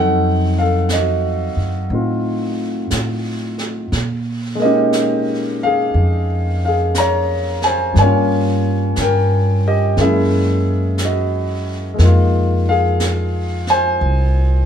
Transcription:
0.00 1.51 F2 medium
0.00 3.89 F#3 soft
0.00 3.91 A3 soft
0.00 1.90 C4 soft
0.00 1.91 D#4 soft
0.00 0.54 A4 medium
0.00 0.52 F#5 medium
0.59 0.89 A4 medium
0.59 0.88 F5 medium
0.89 1.87 D#5 medium
0.89 brush sweep soft
0.89 snare soft
0.89 hi-hat pedal soft
0.95 1.89 F#4 soft
1.56 1.87 F#2 soft
1.90 2.87 A2 medium
1.90 3.93 C4 soft
1.90 3.93 D#4 soft
1.90 brush sweep soft
1.94 3.94 F4 soft
2.90 3.88 A2 medium
2.90 brush sweep soft
2.90 snare soft
2.90 hi-hat pedal soft
3.58 snare soft
3.92 5.90 A#2 medium
3.92 brush sweep soft
3.92 snare soft
4.55 7.94 G#3 soft
4.55 7.96 A#3 soft
4.62 7.98 C#4 soft
4.62 7.99 D#4 medium
4.62 5.59 G4 medium
4.62 5.64 D#5 medium
4.93 brush sweep soft
4.93 snare soft
4.93 hi-hat pedal soft
5.63 6.60 G#4 medium
5.63 6.64 F5 medium
5.94 7.92 F2 medium
5.94 brush sweep soft
6.65 6.96 G#4 soft
6.65 6.95 F5 medium
6.95 7.65 A#5 medium
6.95 brush sweep soft
6.95 snare soft
6.95 hi-hat pedal soft
7.00 7.60 C#5 medium
7.62 7.95 C5 medium
7.62 7.97 G#5 medium
7.62 snare soft
7.94 8.92 G2 medium
7.94 9.96 G3 soft
7.94 9.96 A#3 soft
7.94 brush sweep soft
7.94 snare soft
7.99 9.98 C#4 soft
7.99 8.95 C#5 medium
7.99 9.01 G#5 medium
8.04 10.01 F4 soft
8.96 9.94 G2 medium
8.96 brush sweep soft
8.96 snare soft
8.96 hi-hat pedal soft
9.01 9.62 A#4 medium
9.01 9.67 G5 medium
9.68 9.97 G4 medium
9.68 10.00 D#5 medium
9.97 11.95 F#2 medium
9.97 11.93 G#3 soft
9.97 11.96 A#3 soft
9.97 12.00 C#4 soft
9.97 brush sweep soft
9.97 snare soft
10.01 12.01 E4 soft
10.01 10.96 G#4 medium
10.01 11.03 E5 medium
10.98 brush sweep soft
10.98 snare soft
10.98 hi-hat pedal soft
11.04 11.81 F#4 soft
11.04 11.81 D#5 medium
11.94 14.66 G#3 soft
11.94 14.66 A#3 soft
11.98 13.96 F2 medium
11.98 14.66 D#4 soft
11.98 brush sweep soft
11.98 snare soft
12.05 14.66 F4 soft
12.69 13.65 G#4 medium
12.69 13.71 F5 medium
13.00 brush sweep soft
13.00 snare soft
13.00 hi-hat pedal soft
13.67 14.65 C5 medium
13.67 14.65 G#5 medium
13.67 snare soft
14.00 14.66 C2 medium
14.00 brush sweep soft

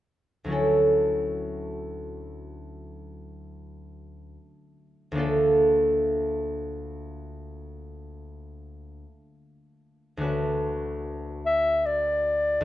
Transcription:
0.44 4.34 D2 soft
0.44 4.36 F#3 soft
0.44 4.38 C#4 soft
0.50 4.40 E4 soft
0.50 4.42 A4 soft
5.12 9.02 D2 soft
5.12 9.04 A#3 soft
5.12 9.05 D4 soft
5.17 9.07 F4 soft
5.17 9.09 A4 soft
10.17 12.59 D2 soft
10.17 12.61 A3 soft
10.17 12.62 D4 soft
10.21 12.64 F#4 soft
10.21 12.64 B4 soft
11.46 11.87 E5 medium
11.86 12.64 D5 soft
12.61 12.64 D2 soft

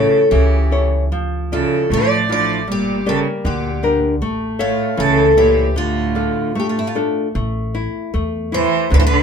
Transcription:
0.00 0.28 C#3 medium
0.00 0.29 A3 medium
0.00 0.55 E4 soft
0.00 0.31 A4 medium
0.00 0.56 A4 soft
0.00 0.56 C#5 medium
0.30 1.11 C#2 medium
0.30 0.87 C#3 medium
0.30 1.09 E3 medium
0.30 0.87 G4 medium
0.71 1.04 E4 soft
0.71 1.04 A4 soft
0.71 1.04 C#5 soft
1.11 1.62 D2 medium
1.11 1.88 F3 medium
1.52 1.89 C#3 medium
1.52 2.14 E4 soft
1.52 2.14 F4 soft
1.52 1.92 A4 medium
1.52 2.14 D5 soft
1.90 2.68 A1 medium
1.90 2.27 F3 medium
1.90 2.66 A3 medium
1.90 2.31 D5 medium
2.29 2.66 F3 medium
2.29 2.60 D4 soft
2.29 2.60 E4 soft
2.29 2.60 F4 soft
2.29 2.67 D5 medium
2.68 3.18 G1 medium
2.68 3.04 A#2 medium
2.68 3.42 G3 medium
2.72 3.09 G4 medium
3.06 3.25 C#3 medium
3.06 3.68 A#3 soft
3.06 3.68 G4 soft
3.06 3.19 A4 medium
3.06 3.68 D5 soft
3.45 4.22 D2 medium
3.45 4.00 A#2 medium
3.45 4.20 D3 medium
3.45 4.00 G4 medium
3.83 4.14 D4 soft
3.83 4.14 G4 soft
3.83 4.14 A#4 soft
4.22 4.72 A1 medium
4.22 4.96 A3 medium
4.59 4.96 A2 medium
4.59 5.00 F4 medium
4.59 5.22 A4 soft
4.59 5.22 C#5 medium
4.59 5.22 E5 soft
4.97 5.76 C#2 medium
4.97 5.35 C#3 medium
4.97 5.74 E3 medium
4.97 5.39 A4 medium
5.37 5.74 A#2 medium
5.37 5.69 E4 soft
5.37 5.77 G4 medium
5.37 5.69 A4 soft
5.37 5.69 C#5 soft
5.76 6.28 D2 medium
5.76 6.56 A2 medium
5.76 6.53 D3 medium
5.76 6.56 F4 medium
6.15 6.79 D4 soft
6.15 6.80 F4 soft
6.15 6.80 A4 soft
6.55 6.68 A#2 soft
6.55 7.33 A3 medium
6.60 6.69 G4 medium
6.68 6.77 A2 soft
6.68 6.78 F4 soft
6.77 6.86 G2 soft
6.77 6.87 E4 medium
6.87 6.95 A2 soft
6.87 6.96 F4 medium
6.95 7.27 D4 soft
6.95 7.27 F4 soft
6.95 7.28 A4 soft
7.35 7.86 A1 medium
7.35 8.12 A3 medium
7.75 8.13 E4 medium
8.14 8.64 E2 medium
8.14 8.51 A3 medium
8.52 8.89 E3 medium
8.52 8.90 E4 soft
8.52 8.93 C5 loud
8.90 9.23 D2 loud
8.90 9.23 D3 medium
8.90 8.98 D3 medium
8.90 8.99 B4 medium
8.98 9.04 E3 medium
8.98 9.05 C5 medium
9.07 9.23 D3 medium
9.07 9.23 B4 loud

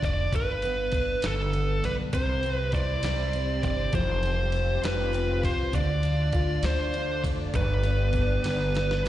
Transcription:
0.00 0.31 F1 medium
0.00 0.32 D3 loud
0.00 0.39 A3 medium
0.00 0.39 D4 medium
0.00 0.38 F4 medium
0.00 kick medium
0.00 ride medium
0.05 0.31 D5 loud
0.32 1.19 G1 medium
0.32 2.13 G2 medium
0.32 1.27 B4 loud
0.32 kick loud
0.32 ride medium
0.62 1.52 B3 medium
0.62 ride soft
0.92 2.19 D4 medium
0.92 kick medium
0.92 ride medium
1.22 1.80 G1 loud
1.22 2.12 D3 medium
1.22 1.86 A4 medium
1.22 snare loud
1.22 ride medium
1.53 2.19 B3 medium
1.53 ride soft
1.83 2.11 B1 medium
1.83 3.03 G3 medium
1.83 1.93 B4 medium
1.83 ride medium
2.13 2.99 C2 loud
2.13 3.92 C3 medium
2.13 3.92 G3 medium
2.13 5.71 C4 medium
2.13 3.92 E4 medium
2.13 2.54 C5 loud
2.13 3.92 C5 medium
2.13 kick loud
2.13 ride medium
2.43 3.33 C4 medium
2.43 ride soft
2.54 2.69 B4 loud
2.72 3.99 E4 medium
2.72 3.64 D5 medium
2.72 kick medium
2.72 ride medium
3.03 3.60 C2 loud
3.03 3.63 G3 medium
3.03 snare loud
3.03 ride medium
3.33 3.99 C4 medium
3.33 ride soft
3.63 3.91 G1 medium
3.63 3.99 G3 medium
3.63 3.92 D5 loud
3.63 kick medium
3.63 ride medium
3.93 4.79 F1 loud
3.93 5.73 F3 medium
3.93 5.72 G3 medium
3.93 7.51 F4 medium
3.93 5.72 G4 medium
3.93 4.80 C5 loud
3.93 kick loud
3.93 ride medium
4.23 5.12 C4 medium
4.23 ride soft
4.52 5.80 F4 medium
4.52 ride medium
4.83 5.45 F1 medium
4.83 5.42 G3 medium
4.83 5.40 B4 medium
4.83 snare loud
4.83 ride medium
5.13 5.79 C4 medium
5.13 ride soft
5.43 5.72 C2 medium
5.43 5.79 G3 medium
5.43 5.72 C5 loud
5.43 kick medium
5.43 ride medium
5.73 6.60 D2 loud
5.73 7.54 D3 medium
5.73 7.52 A3 medium
5.73 7.53 D4 medium
5.73 9.09 D5 medium
5.73 6.65 D5 loud
5.73 kick loud
5.73 ride medium
6.03 6.93 D4 medium
6.03 ride soft
6.32 7.59 F4 medium
6.32 kick loud
6.32 ride medium
6.63 7.20 D2 loud
6.63 7.23 A3 medium
6.63 7.21 C5 medium
6.63 snare loud
6.63 ride medium
6.93 7.60 D4 medium
6.93 ride soft
7.24 7.52 F1 medium
7.24 7.60 A3 medium
7.24 kick medium
7.24 ride medium
7.54 8.40 G1 loud
7.54 9.09 G2 medium
7.54 9.09 B3 medium
7.54 9.09 D4 medium
7.54 9.09 G4 medium
7.54 9.01 B4 loud
7.54 kick loud
7.54 ride medium
7.83 8.73 B3 medium
7.83 ride soft
8.13 9.09 D4 medium
8.13 kick medium
8.13 ride medium
8.44 9.01 G1 medium
8.44 9.09 D3 medium
8.44 snare medium
8.44 ride medium
8.74 9.09 B3 medium
8.74 snare medium
8.74 ride soft
8.91 snare medium
9.05 9.09 B1 medium
9.05 9.09 G3 medium

